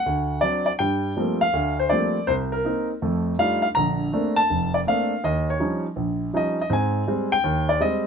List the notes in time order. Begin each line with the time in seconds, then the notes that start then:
Already playing: F#5
0.06 D2
0.41 F#3 C4 D4 D5
0.66 D5
0.79 G2 G3 G5
1.17 F3 G3 A3 A#3 C4
1.41 F5
1.53 D2 D3
1.80 C5
1.90 F3 G3 A3 A#3 C4 D5
2.27 C2 C5
2.52 A#4
2.64 A#3 C4 D#4
3.02 F2 A3
3.39 G3 A3 D4 D#4 F4 F5
3.62 F5
3.75 A#1 D3 A#5
4.13 A3 A#3 C4 D4
4.36 A5
4.50 F1
4.74 D5
4.87 A3 A#3 C4 D4 F5
5.24 D#2 D#5
5.50 C#5
5.60 F3 G3 C#4 D#4
5.96 A#1
6.33 F3 G3 C#4 D#4 D#5
6.61 D#5
6.70 G#2 C4 G#5
7.08 G3 G#3 C4
7.32 G5
7.44 D#2
7.69 D5
7.80 G3 G#3 C4 D#5